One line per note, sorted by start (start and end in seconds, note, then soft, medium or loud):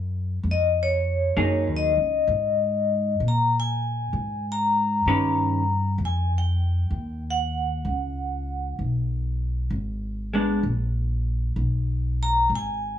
0.00 0.40 F#2 medium
0.43 1.33 F2 medium
0.51 0.77 D#5 medium
0.83 1.67 C#5 medium
1.37 1.67 F#2 medium
1.37 1.91 F#3 medium
1.37 1.91 A#3 medium
1.37 1.92 D#4 medium
1.37 1.92 G#4 medium
1.67 1.97 D#2 soft
1.76 3.11 D#5 medium
1.97 2.26 C#2 medium
2.27 3.18 G#2 medium
3.20 4.10 A#2 medium
3.28 3.54 A#5 medium
3.60 4.44 G#5 medium
4.13 5.03 G#2 medium
4.52 5.88 A#5 medium
5.06 5.96 G2 medium
5.06 5.62 D#3 medium
5.06 5.62 C#4 medium
5.06 5.62 G4 medium
5.06 5.63 B4 medium
5.98 6.88 F2 medium
6.05 6.32 G#5 medium
6.38 7.23 G5 medium
6.91 7.81 D#2 medium
7.31 8.67 F#5 medium
7.85 8.74 C#2 medium
8.79 9.68 B1 medium
9.70 10.60 G#1 medium
10.34 10.60 G#3 medium
10.34 10.61 B3 medium
10.34 10.61 D4 medium
10.63 11.53 A#1 medium
11.56 12.45 B1 medium
12.23 12.50 A#5 medium
12.50 12.99 G#1 medium
12.56 12.99 G#5 medium